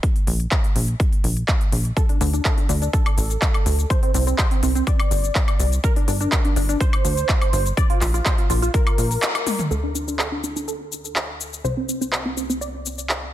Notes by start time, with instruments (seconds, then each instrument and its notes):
0.03 kick, closed hi-hat
0.16 closed hi-hat
0.27 analog synth bass A#1, open hi-hat
0.40 closed hi-hat
0.51 kick, clap, closed hi-hat
0.64 closed hi-hat
0.76 analog synth bass A#1, open hi-hat
0.88 closed hi-hat
1.00 kick, closed hi-hat
1.12 closed hi-hat
1.24 analog synth bass A#1, open hi-hat
1.37 closed hi-hat
1.48 kick, clap, closed hi-hat
1.61 closed hi-hat
1.72 analog synth bass A#1, open hi-hat
1.85 closed hi-hat
1.97 synth arpeggio sound A4, kick, closed hi-hat, shaker
2.09 synth arpeggio sound D4, closed hi-hat
2.21 analog synth bass D2, synth arpeggio sound D4, open hi-hat, shaker
2.33 synth arpeggio sound D4, closed hi-hat, shaker
2.45 synth arpeggio sound A4, kick, clap, closed hi-hat, shaker
2.58 synth arpeggio sound D4, closed hi-hat
2.69 analog synth bass D2, synth arpeggio sound D4, open hi-hat, shaker
2.82 synth arpeggio sound D4, closed hi-hat, shaker
2.93 synth arpeggio sound A4, kick, closed hi-hat, shaker
3.06 closed hi-hat, high woodblock
3.18 analog synth bass A1, open hi-hat, shaker
3.30 closed hi-hat, shaker
3.42 kick, clap, closed hi-hat, shaker
3.54 closed hi-hat, high woodblock
3.66 analog synth bass D2, open hi-hat, shaker
3.79 closed hi-hat, shaker
3.90 synth arpeggio sound C5, kick, closed hi-hat, shaker
4.03 synth arpeggio sound C4, closed hi-hat
4.14 analog synth bass C2, synth arpeggio sound C4, open hi-hat, shaker
4.27 synth arpeggio sound C4, closed hi-hat, shaker
4.38 synth arpeggio sound C5, kick, clap, closed hi-hat, shaker
4.51 synth arpeggio sound C4, closed hi-hat
4.63 analog synth bass C2, synth arpeggio sound C4, open hi-hat, shaker
4.75 synth arpeggio sound C4, closed hi-hat, shaker
4.87 synth arpeggio sound D5, kick, closed hi-hat, shaker
5.00 closed hi-hat, high woodblock
5.11 analog synth bass G1, open hi-hat, shaker
5.24 closed hi-hat, shaker
5.35 kick, clap, closed hi-hat, shaker
5.48 closed hi-hat, high woodblock
5.60 analog synth bass C2, open hi-hat, shaker
5.72 closed hi-hat, shaker
5.84 synth arpeggio sound A#4, kick, closed hi-hat, shaker
5.96 synth arpeggio sound D4, closed hi-hat
6.08 analog synth bass G1, synth arpeggio sound D4, open hi-hat, shaker
6.21 synth arpeggio sound D4, closed hi-hat, shaker
6.32 synth arpeggio sound A#4, kick, clap, closed hi-hat, shaker
6.45 synth arpeggio sound D4, closed hi-hat
6.56 analog synth bass G1, synth arpeggio sound D4, open hi-hat, shaker
6.69 synth arpeggio sound D4, closed hi-hat, shaker
6.81 synth arpeggio sound C5, kick, closed hi-hat, shaker
6.93 closed hi-hat, high woodblock
7.05 analog synth bass D2, open hi-hat, shaker
7.17 closed hi-hat, shaker
7.29 kick, clap, closed hi-hat, shaker
7.41 closed hi-hat, high woodblock
7.53 analog synth bass G1, open hi-hat, shaker
7.66 closed hi-hat, shaker
7.77 synth arpeggio sound D5, kick, closed hi-hat, shaker
7.90 synth arpeggio sound F4, closed hi-hat
8.01 analog synth bass A#1, synth arpeggio sound F4, clap, open hi-hat, shaker
8.14 synth arpeggio sound F4, closed hi-hat, shaker
8.26 synth arpeggio sound C5, kick, clap, closed hi-hat, shaker
8.38 synth arpeggio sound F4, closed hi-hat
8.50 analog synth bass A#1, synth arpeggio sound F4, open hi-hat, shaker
8.62 synth arpeggio sound F4, closed hi-hat, shaker
8.74 synth arpeggio sound A#4, kick, closed hi-hat, shaker
8.87 closed hi-hat, high woodblock
8.98 analog synth bass A#1, open hi-hat, shaker
9.11 open hi-hat, shaker
9.22 clap, closed hi-hat, shaker
9.35 closed hi-hat, high woodblock
9.47 open hi-hat, high tom, shaker
9.59 closed hi-hat, mid tom, shaker
9.71 analog synth bass D2, synth arpeggio sound A4, shaker
9.83 synth arpeggio sound D4
9.95 synth arpeggio sound D4, shaker
10.08 synth arpeggio sound D4, shaker
10.19 synth arpeggio sound A4, clap, shaker
10.32 synth arpeggio sound D4
10.43 synth arpeggio sound D4, shaker
10.56 synth arpeggio sound D4, shaker
10.68 synth arpeggio sound A4, shaker
10.92 shaker
11.05 shaker
11.16 clap, shaker
11.41 shaker
11.53 shaker
11.64 analog synth bass C2, synth arpeggio sound C5, shaker
11.77 synth arpeggio sound C4
11.89 synth arpeggio sound C4, shaker
12.01 synth arpeggio sound C4, shaker
12.13 synth arpeggio sound C5, clap, shaker
12.25 synth arpeggio sound C4
12.37 synth arpeggio sound C4, shaker
12.49 synth arpeggio sound C4, shaker
12.61 synth arpeggio sound D5, shaker
12.86 shaker
12.99 shaker
13.09 clap, shaker